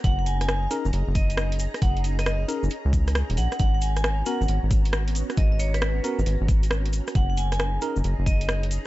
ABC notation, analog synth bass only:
X:1
M:4/4
L:1/16
Q:"Swing 16ths" 1/4=135
K:F#mix
V:1 name="Analog synth bass" clef=bass
F,,,6 z F,,, F,,, F,,,6 z | F,,,6 z F,,, z C,,4 D,,, A,,, z | G,,,6 z G,,, G,,, G,,,6 z | G,,,6 z G,,, G,,, G,,,6 z |
F,,,6 z F,,, F,,, F,,,6 z |]